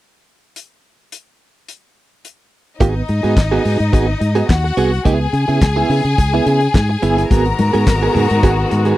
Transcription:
0.56 closed hi-hat
1.12 closed hi-hat
1.68 closed hi-hat
2.25 closed hi-hat
2.80 G#1 B3 D#4 F#4 G#4 D#5, kick, closed hi-hat
2.96 muted clean electric guitar stroke
3.09 G#2, muted clean electric guitar stroke, closed hi-hat
3.23 G#2 B3 F#4 G#4, closed hi-hat
3.37 G#1, kick, snare, clap, closed hi-hat
3.51 B3 F#4 G#4
3.65 G#2 F#4 G#4, open hi-hat
3.80 G#2, muted clean electric guitar stroke, closed hi-hat
3.93 G#1 B3 F#4 G#4, kick, closed hi-hat
4.07 muted clean electric guitar stroke
4.20 G#2, muted clean electric guitar stroke, closed hi-hat
4.35 B3 F#4 G#4, closed hi-hat
4.49 D#2 F#4 F#5, kick, snare, clap, closed hi-hat
4.64 muted clean electric guitar stroke, snare
4.77 C2 B3 F#4 G#4, closed hi-hat
4.92 muted clean electric guitar stroke, closed hi-hat
5.05 C#2 B3 E4 G#4 G#5, kick, closed hi-hat
5.33 C#3, muted clean electric guitar stroke, closed hi-hat
5.48 C#3 B3 E4 G#4, closed hi-hat
5.61 C#2, muted clean electric guitar stroke, kick, snare, clap, closed hi-hat
5.76 B3 E4 G#4
5.89 C#3 B3 E4 G#4, open hi-hat
6.05 C#3, closed hi-hat
6.18 C#2, muted clean electric guitar stroke, kick, closed hi-hat
6.34 B3 E4 G#4
6.46 C#3 B3 E4 G#4, closed hi-hat
6.61 closed hi-hat
6.74 G#2, muted clean electric guitar stroke, kick, snare, clap, closed hi-hat
6.90 muted clean electric guitar stroke
7.03 G1 B3 E4 G#4, closed hi-hat
7.17 B3 E4 G#4, closed hi-hat
7.30 G#1 D#3 G#3 B3 F#4 G#4 A#4 A#5, kick, closed hi-hat, muted conga
7.45 muted clean electric guitar stroke, closed hi-hat
7.59 G#2, muted clean electric guitar stroke, closed hi-hat, muted conga
7.73 G#2 B3 F#4 G#4, closed hi-hat
7.87 G#1, kick, snare, clap, closed hi-hat, high conga
8.03 B3 F#4 G#4
8.15 G#2 B3 F#4 G#4, open hi-hat, low conga
8.30 G#2, closed hi-hat
8.43 G#1 B3 F#4 G#4, kick, closed hi-hat
8.71 G#2, muted clean electric guitar stroke, closed hi-hat
8.85 B3 F#4 G#4, closed hi-hat

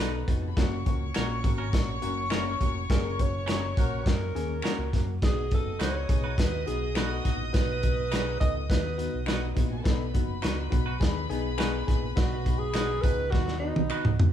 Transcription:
Already playing: B1 D#4 F#4 B4 B5
0.00 B3 D#4 F#4 A4 B4
0.27 F1 B3 D#4 F#4 F#5, kick, closed hi-hat
0.36 G#4 G#5
0.42 A4 A5
0.48 B4 B5
0.56 F#1 A#3 C#4 F#4 C#5 C#6, kick, snare, closed hi-hat
0.86 C#2 A#3 C#4 F#4, kick, closed hi-hat
1.14 A#1 A#3 C#4 F#4 A#4, finger snap, snare, closed hi-hat
1.44 G#1 A#3 C#4 F#4, kick, closed hi-hat
1.58 C#4 F#4 A#4
1.73 A#1 A#3 C#4 F#4, kick, snare, closed hi-hat
2.02 F#1 A#3 C#4 F#4, closed hi-hat
2.30 A#3 C#4 E4 F#4 A#4, finger snap, snare, closed hi-hat
2.60 F1 A#3 C#4 F#4, kick, closed hi-hat
2.90 F#1 A#3 C#4 G#4 A#4, kick, snare, closed hi-hat
3.19 A#3 C#4 F#4 C#5, kick, closed hi-hat
3.46 A#3 C#4 F#4 A#4, finger snap, snare, closed hi-hat
3.77 A#1 A#3 C#4 F#4 A#4, kick, closed hi-hat
4.06 F#2 A#3 C#4 F#4 A#4, kick, snare, closed hi-hat
4.35 D#2 A#3 C#4 G#4, closed hi-hat
4.62 A#3 C#4 F#4 A#4, finger snap, muted fingered electric bass stroke, snare, closed hi-hat
4.78 C#2
4.93 F#2 A#3 C#4 F#4, kick, snare, closed hi-hat
5.22 B1 B3 D#4 F#4 G#4 D#5 D#6, kick, snare, closed hi-hat
5.51 F#1 B3 D#4 F#4 A4, kick, closed hi-hat
5.79 C#2 B3 D#4 F#4 B4 C#5, finger snap, snare, closed hi-hat
6.09 B1 B3 D#4 G#4, kick, closed hi-hat
6.24 D#4 F#4 B4
6.37 D#2 B3 D#4 F#4 B4, kick, snare, closed hi-hat
6.66 B1 B3 D#4 F#4 G#4, closed hi-hat
6.95 B3 D#4 F#4 A4 B4, finger snap, snare, closed hi-hat
7.23 A#1 B3 D#4 F#4, kick, snare, closed hi-hat
7.53 B1 B3 D#4 F#4 B4, kick, snare, closed hi-hat
7.82 B3 D#4 F#4, kick, closed hi-hat
8.11 B3 D#4 F#4 G#4 B4, finger snap, snare, closed hi-hat
8.40 C#2 B3 D#4 A4 D#5, kick, closed hi-hat
8.69 D#2 B3 D#4 F#4 B4, kick, snare, closed hi-hat
8.97 B3 D#4 F#4, closed hi-hat
9.14 B1
9.26 B3 D#4 F#4 B4, finger snap, snare, closed hi-hat
9.55 A#1 B3 D#4 E4 F#4 E5, kick, closed hi-hat
9.62 F#4 F#5
9.71 G#4 G#5
9.78 A4 A5
9.84 B1 B3 D#4 A4 B4 B5, kick, snare, closed hi-hat
10.14 F#1 B3 D#4 F#4, kick, closed hi-hat
10.42 C#2 B3 D#4 F#4 B4, finger snap, snare, closed hi-hat
10.70 B1 B3 D#4 F#4, kick, closed hi-hat
10.86 D#4 F#4 B4
11.00 D#2 B3 D#4 G#4, kick, snare, closed hi-hat
11.29 B1 B3 D#4 G#4, closed hi-hat
11.58 B3 D#4 F#4 G#4 B4, finger snap, snare, closed hi-hat
11.87 A#1 B3 D#4 G#4, kick, snare, closed hi-hat
12.15 B1 B3 D#4 F#4, kick, snare, closed hi-hat
12.45 B3 D#4 F#4, kick, closed hi-hat
12.59 G#4
12.74 B3 D#4 F#4 B4, finger snap, snare, closed hi-hat
13.02 C#2 B3 D#4 F#4 G#4 B4, kick, closed hi-hat
13.31 D#2 B3 D#4 F#4, kick, snare
13.48 snare
13.60 B3 D#4 F#4
13.76 B1, high tom
13.90 B3 D#4 F#4 B4, finger snap
14.05 C#2, mid tom
14.19 D2 B3 D#4 F#4, floor tom

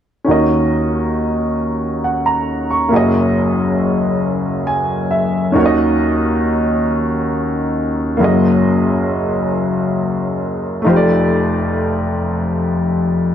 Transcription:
0.24 D#2 D#3 C#4 D#4 F#4
0.30 A#4 D#5
2.04 F#5
2.26 A#5
2.71 C#6
2.89 F#1 F#2 A#3 E4 F#4
2.94 G#4 D#5
4.67 G#5
5.11 E5
5.52 D#2 D#3 C#4 D#4 F#4
5.57 A#4 C#5
5.66 D#5
8.17 F#1 F#2 A#3 E4 F#4
8.22 G#4 D#5
10.82 A3 D#4
10.86 F1 F2 F4 G4 C5
10.96 D5

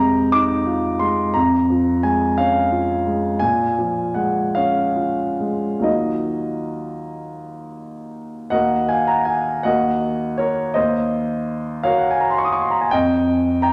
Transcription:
Already playing: F2 C3 G#3 G5 A#5
0.32 D#4 D6
0.67 F4
0.99 G#3 C6
1.34 F2 A#5
1.70 F3
2.03 G#3 G#5
2.38 C#4 F5
2.72 F4
3.07 G#3
3.39 A#2 G#5
3.79 F3
4.14 G#3 F#5
4.55 C#4 F5
4.96 F4
5.40 G#3
5.79 D#2 F#3 D#4 F4
5.83 A#4 D#5
8.50 D#2 F#4 A#4 D#5 F#5
8.89 F5 G#5
9.07 F#5 A#5
9.25 F5 G#5
9.63 D#2 F#4 A#4 D#5 F#5
10.38 A#4 C#5
10.74 D#2 C5 D#5
11.83 F#4 A#4 C#5 F5
11.98 F#5
12.11 G#5
12.21 A#5
12.31 C6
12.38 C#6
12.45 D#6
12.53 C#6
12.62 C6
12.71 A#5
12.81 G#5
12.91 F2 D#5 G5
13.62 G5 A#5

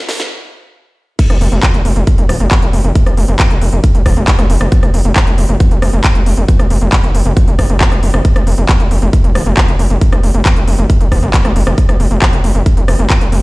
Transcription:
0.09 snare, open hi-hat
0.20 snare, closed hi-hat
1.19 kick, closed hi-hat, crash
1.30 F1, cross-stick, closed hi-hat
1.41 F1, open hi-hat
1.52 F1, closed hi-hat
1.63 kick, clap, closed hi-hat
1.74 F1, closed hi-hat
1.85 F1, open hi-hat
1.96 F1, closed hi-hat
2.07 kick, closed hi-hat
2.18 F1, closed hi-hat
2.29 D1, cross-stick, open hi-hat
2.40 F1, closed hi-hat
2.51 kick, clap, closed hi-hat
2.62 F1, closed hi-hat
2.73 F1, open hi-hat
2.84 F1, closed hi-hat
2.95 kick, closed hi-hat
3.06 F1, cross-stick, closed hi-hat
3.17 F1, open hi-hat
3.28 F1, closed hi-hat
3.39 kick, clap, closed hi-hat
3.51 F1, closed hi-hat
3.62 F1, open hi-hat
3.73 F1, closed hi-hat
3.84 kick, closed hi-hat
3.95 F1, closed hi-hat
4.06 D1, kick, cross-stick, open hi-hat
4.17 F1, closed hi-hat
4.28 kick, clap, closed hi-hat
4.39 F1, cross-stick, closed hi-hat
4.50 F1, open hi-hat
4.61 F1, cross-stick, closed hi-hat
4.72 kick, closed hi-hat
4.83 F1, cross-stick, closed hi-hat
4.94 F1, open hi-hat
5.05 F1, closed hi-hat
5.16 kick, clap, closed hi-hat
5.27 F1, closed hi-hat
5.38 F1, open hi-hat
5.49 F1, closed hi-hat
5.60 kick, closed hi-hat
5.71 F1, closed hi-hat
5.82 F1, cross-stick, open hi-hat
5.93 F1, closed hi-hat
6.04 kick, clap, closed hi-hat
6.15 F1, closed hi-hat
6.26 F1, open hi-hat
6.37 F1, closed hi-hat
6.48 kick, closed hi-hat
6.59 F1, cross-stick, closed hi-hat
6.70 F1, open hi-hat
6.82 F1, closed hi-hat
6.93 kick, clap, closed hi-hat
7.04 F1, closed hi-hat
7.15 F1, open hi-hat
7.26 F1, closed hi-hat
7.37 kick, closed hi-hat
7.48 F1, closed hi-hat
7.59 F1, kick, cross-stick, open hi-hat
7.70 F1, closed hi-hat
7.81 kick, clap, closed hi-hat
7.92 F1, cross-stick, closed hi-hat
8.03 F1, open hi-hat
8.14 F1, cross-stick, closed hi-hat
8.25 kick, closed hi-hat
8.36 F1, cross-stick, closed hi-hat
8.47 F1, open hi-hat
8.58 F1, closed hi-hat
8.69 kick, clap, closed hi-hat
8.80 F1, closed hi-hat
8.91 F1, open hi-hat
9.02 F1, closed hi-hat
9.13 kick, closed hi-hat
9.24 F1, closed hi-hat
9.35 D1, cross-stick, open hi-hat
9.46 F1, closed hi-hat
9.57 kick, clap, closed hi-hat
9.68 F1, closed hi-hat
9.79 F1, open hi-hat
9.90 F1, closed hi-hat
10.01 kick, closed hi-hat
10.12 F1, cross-stick, closed hi-hat
10.23 F1, open hi-hat
10.34 F1, closed hi-hat
10.46 kick, clap, closed hi-hat
10.56 F1, closed hi-hat
10.68 F1, open hi-hat
10.79 F1, closed hi-hat
10.90 kick, closed hi-hat
11.01 F1, closed hi-hat
11.12 D1, kick, cross-stick, open hi-hat
11.23 F1, closed hi-hat
11.34 kick, clap, closed hi-hat
11.45 F1, cross-stick, closed hi-hat
11.56 F1, open hi-hat
11.67 F1, cross-stick, closed hi-hat
11.78 kick, closed hi-hat
11.89 F1, cross-stick, closed hi-hat
12.00 F1, open hi-hat
12.11 F1, closed hi-hat
12.22 kick, clap, closed hi-hat
12.33 F1, closed hi-hat
12.44 F1, open hi-hat
12.55 F1, closed hi-hat
12.66 kick, closed hi-hat
12.77 F1, closed hi-hat
12.88 F1, cross-stick, open hi-hat
12.99 F1, closed hi-hat
13.10 kick, clap, closed hi-hat
13.21 F1, closed hi-hat
13.32 F1, open hi-hat

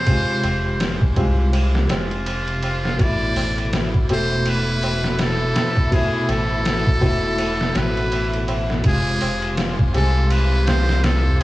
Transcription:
Already playing: C3 G#3 G#4 C5
0.06 C3 G#3, kick, ride, tabla na
0.10 F4
0.28 tabla na
0.43 F1, ride, tabla na, tabla ge
0.66 tabla na
0.80 snare, ride, tabla na
1.01 kick, tabla na
1.16 C2 C3 G#3 F4, kick, ride, tabla na
1.38 tabla na
1.53 ride, tabla na
1.75 snare, tabla na
1.89 F1 F4, snare, ride, tabla na
2.11 ride, tabla na
2.26 ride, tabla na
2.48 ride, tabla na
2.63 ride, tabla na
2.85 snare, tabla na, tabla ge
2.98 A1 B2 A3 E4 D5, kick, ride, tabla na
3.04 E4
3.23 tabla na
3.36 A1, open hi-hat, tabla na, tabla ge
3.58 ride, tabla na
3.73 snare, ride, tabla na
3.94 kick, tabla na
4.09 E1 B2 A3 A4 C5, ride, tabla na
4.31 tabla na
4.46 B4, ride, tabla na
4.68 tabla na
4.83 ride, tabla na, tabla ge
5.04 snare, tabla na
5.19 A4, snare, ride, tabla na
5.42 tabla na, tabla ge
5.56 snare, ride, tabla na
5.77 kick, tabla na
5.91 B2 A3 G#4, kick, ride, tabla na
5.96 E4
6.14 tabla na
6.29 A1 A4, ride, tabla na, tabla ge
6.51 tabla na
6.65 snare, ride, tabla na
6.87 kick, tabla na
7.01 E1 B2 A3 E4, kick, ride, tabla na
7.24 tabla na
7.38 ride, tabla na
7.61 snare
7.75 A1 B4, snare, ride, tabla na
7.97 ride, tabla na
8.12 ride, tabla na
8.33 ride, tabla na
8.48 ride, tabla na
8.70 snare, tabla na, tabla ge
8.83 F1 C3 F3 G#3 F4 G#4, kick, ride, tabla na
8.88 F4
9.07 tabla na
9.21 F1, open hi-hat, tabla na, tabla ge
9.42 ride, tabla na
9.57 snare, ride, tabla na
9.79 kick, tabla na
9.94 C2 C3 G#3 G#4 A4, ride, tabla na
10.17 tabla na
10.30 B4, ride, tabla na
10.53 tabla na
10.67 C5, snare, ride, tabla na, tabla ge
10.89 snare, tabla na
11.04 A4, snare, ride, tabla na
11.26 tabla na, tabla ge

